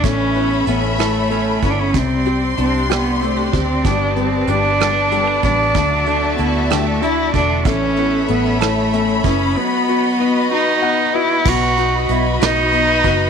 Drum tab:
CC |------|------|------|------|
HH |xxxxxx|xxxxxx|xxxxxx|xxxxxx|
SD |---r--|---r--|---r--|---r--|
BD |o----o|o----o|o----o|o----o|

CC |------|------|x-----|
HH |xxxxxx|------|-xxxxx|
SD |---r--|------|---o--|
BD |o----o|------|o----o|